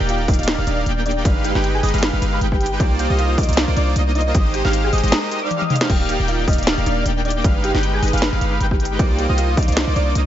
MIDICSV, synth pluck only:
0, 0, Header, 1, 2, 480
1, 0, Start_track
1, 0, Key_signature, -3, "major"
1, 0, Tempo, 387097
1, 1550, Time_signature, 4, 2, 24, 8
1, 12722, End_track
2, 0, Start_track
2, 0, Title_t, "Synth pluck"
2, 0, Program_c, 0, 84
2, 111, Note_on_c, 0, 65, 78
2, 112, Note_on_c, 0, 77, 91
2, 327, Note_off_c, 0, 65, 0
2, 327, Note_off_c, 0, 77, 0
2, 351, Note_on_c, 0, 75, 97
2, 352, Note_on_c, 0, 63, 78
2, 783, Note_off_c, 0, 75, 0
2, 784, Note_off_c, 0, 63, 0
2, 831, Note_on_c, 0, 74, 97
2, 832, Note_on_c, 0, 62, 79
2, 1263, Note_off_c, 0, 62, 0
2, 1263, Note_off_c, 0, 74, 0
2, 1313, Note_on_c, 0, 62, 75
2, 1313, Note_on_c, 0, 74, 95
2, 1744, Note_off_c, 0, 62, 0
2, 1744, Note_off_c, 0, 74, 0
2, 1792, Note_on_c, 0, 67, 77
2, 1793, Note_on_c, 0, 79, 96
2, 2111, Note_off_c, 0, 67, 0
2, 2111, Note_off_c, 0, 79, 0
2, 2163, Note_on_c, 0, 68, 79
2, 2163, Note_on_c, 0, 80, 97
2, 2474, Note_off_c, 0, 80, 0
2, 2475, Note_off_c, 0, 68, 0
2, 2512, Note_on_c, 0, 71, 78
2, 2512, Note_on_c, 0, 83, 94
2, 2831, Note_off_c, 0, 71, 0
2, 2831, Note_off_c, 0, 83, 0
2, 2885, Note_on_c, 0, 71, 77
2, 2885, Note_on_c, 0, 83, 91
2, 3094, Note_off_c, 0, 71, 0
2, 3095, Note_off_c, 0, 83, 0
2, 3126, Note_on_c, 0, 67, 75
2, 3127, Note_on_c, 0, 79, 95
2, 3436, Note_off_c, 0, 67, 0
2, 3436, Note_off_c, 0, 79, 0
2, 3473, Note_on_c, 0, 67, 77
2, 3473, Note_on_c, 0, 79, 102
2, 3688, Note_off_c, 0, 67, 0
2, 3688, Note_off_c, 0, 79, 0
2, 3711, Note_on_c, 0, 67, 79
2, 3712, Note_on_c, 0, 79, 93
2, 3927, Note_off_c, 0, 67, 0
2, 3927, Note_off_c, 0, 79, 0
2, 3952, Note_on_c, 0, 77, 95
2, 3953, Note_on_c, 0, 65, 80
2, 4167, Note_off_c, 0, 77, 0
2, 4168, Note_off_c, 0, 65, 0
2, 4190, Note_on_c, 0, 63, 82
2, 4191, Note_on_c, 0, 75, 99
2, 4623, Note_off_c, 0, 63, 0
2, 4623, Note_off_c, 0, 75, 0
2, 4669, Note_on_c, 0, 74, 95
2, 4670, Note_on_c, 0, 62, 78
2, 5102, Note_off_c, 0, 62, 0
2, 5102, Note_off_c, 0, 74, 0
2, 5149, Note_on_c, 0, 63, 77
2, 5149, Note_on_c, 0, 75, 96
2, 5582, Note_off_c, 0, 63, 0
2, 5582, Note_off_c, 0, 75, 0
2, 5629, Note_on_c, 0, 67, 78
2, 5630, Note_on_c, 0, 79, 97
2, 5950, Note_off_c, 0, 67, 0
2, 5950, Note_off_c, 0, 79, 0
2, 6002, Note_on_c, 0, 68, 80
2, 6003, Note_on_c, 0, 80, 97
2, 6314, Note_off_c, 0, 68, 0
2, 6314, Note_off_c, 0, 80, 0
2, 6350, Note_on_c, 0, 70, 74
2, 6350, Note_on_c, 0, 82, 94
2, 6670, Note_off_c, 0, 70, 0
2, 6670, Note_off_c, 0, 82, 0
2, 6722, Note_on_c, 0, 74, 78
2, 6722, Note_on_c, 0, 86, 92
2, 6933, Note_off_c, 0, 74, 0
2, 6933, Note_off_c, 0, 86, 0
2, 6961, Note_on_c, 0, 75, 75
2, 6962, Note_on_c, 0, 87, 94
2, 7273, Note_off_c, 0, 75, 0
2, 7274, Note_off_c, 0, 87, 0
2, 7307, Note_on_c, 0, 67, 76
2, 7308, Note_on_c, 0, 79, 101
2, 7525, Note_off_c, 0, 67, 0
2, 7525, Note_off_c, 0, 79, 0
2, 7549, Note_on_c, 0, 79, 91
2, 7550, Note_on_c, 0, 67, 78
2, 7766, Note_off_c, 0, 67, 0
2, 7766, Note_off_c, 0, 79, 0
2, 7789, Note_on_c, 0, 65, 81
2, 7790, Note_on_c, 0, 77, 91
2, 8006, Note_off_c, 0, 65, 0
2, 8006, Note_off_c, 0, 77, 0
2, 8030, Note_on_c, 0, 63, 78
2, 8030, Note_on_c, 0, 75, 99
2, 8463, Note_off_c, 0, 63, 0
2, 8463, Note_off_c, 0, 75, 0
2, 8510, Note_on_c, 0, 74, 97
2, 8511, Note_on_c, 0, 62, 80
2, 8943, Note_off_c, 0, 62, 0
2, 8943, Note_off_c, 0, 74, 0
2, 8991, Note_on_c, 0, 62, 76
2, 8991, Note_on_c, 0, 74, 94
2, 9423, Note_off_c, 0, 62, 0
2, 9423, Note_off_c, 0, 74, 0
2, 9471, Note_on_c, 0, 67, 77
2, 9471, Note_on_c, 0, 79, 95
2, 9791, Note_off_c, 0, 67, 0
2, 9791, Note_off_c, 0, 79, 0
2, 9843, Note_on_c, 0, 68, 79
2, 9844, Note_on_c, 0, 80, 94
2, 10154, Note_off_c, 0, 68, 0
2, 10155, Note_off_c, 0, 80, 0
2, 10189, Note_on_c, 0, 71, 76
2, 10189, Note_on_c, 0, 83, 94
2, 10510, Note_off_c, 0, 71, 0
2, 10510, Note_off_c, 0, 83, 0
2, 10563, Note_on_c, 0, 71, 79
2, 10563, Note_on_c, 0, 83, 91
2, 10773, Note_off_c, 0, 71, 0
2, 10773, Note_off_c, 0, 83, 0
2, 10803, Note_on_c, 0, 67, 76
2, 10803, Note_on_c, 0, 79, 94
2, 11114, Note_off_c, 0, 67, 0
2, 11114, Note_off_c, 0, 79, 0
2, 11149, Note_on_c, 0, 67, 80
2, 11149, Note_on_c, 0, 79, 101
2, 11366, Note_off_c, 0, 67, 0
2, 11366, Note_off_c, 0, 79, 0
2, 11388, Note_on_c, 0, 79, 91
2, 11389, Note_on_c, 0, 67, 77
2, 11605, Note_off_c, 0, 79, 0
2, 11606, Note_off_c, 0, 67, 0
2, 11629, Note_on_c, 0, 77, 92
2, 11630, Note_on_c, 0, 65, 78
2, 11846, Note_off_c, 0, 65, 0
2, 11846, Note_off_c, 0, 77, 0
2, 11869, Note_on_c, 0, 63, 80
2, 11869, Note_on_c, 0, 75, 97
2, 12302, Note_off_c, 0, 63, 0
2, 12302, Note_off_c, 0, 75, 0
2, 12350, Note_on_c, 0, 74, 97
2, 12351, Note_on_c, 0, 62, 76
2, 12722, Note_off_c, 0, 62, 0
2, 12722, Note_off_c, 0, 74, 0
2, 12722, End_track
0, 0, End_of_file